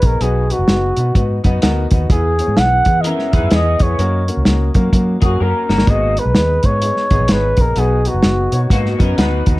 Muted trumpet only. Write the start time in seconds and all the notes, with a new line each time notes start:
0.06 A#4
0.22 G#4
0.52 F#4
2.11 G#4
2.58 F#5
3.01 D#5
3.08 E5
3.54 D#5
3.82 C#5
5.25 F#4
5.42 A#4
5.90 D#5
6.19 B4
6.65 C#5
7.32 B4
7.61 A#4
7.79 G#4
8.08 F#4